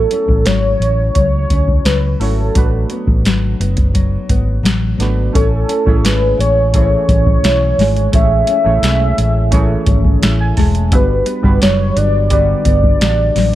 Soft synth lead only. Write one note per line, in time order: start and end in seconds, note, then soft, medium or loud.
0.00 0.47 A4 loud
0.46 1.14 C#5 loud
1.14 1.87 C#5 loud
1.85 2.21 B4 medium
2.20 2.90 A4 medium
5.35 6.07 A4 loud
6.05 6.40 B4 loud
6.40 6.73 C#5 loud
6.76 8.11 C#5 loud
8.15 10.19 E5 loud
10.95 11.59 B4 loud
11.62 11.99 C#5 medium
11.97 12.32 D5 loud
12.32 13.55 D5 loud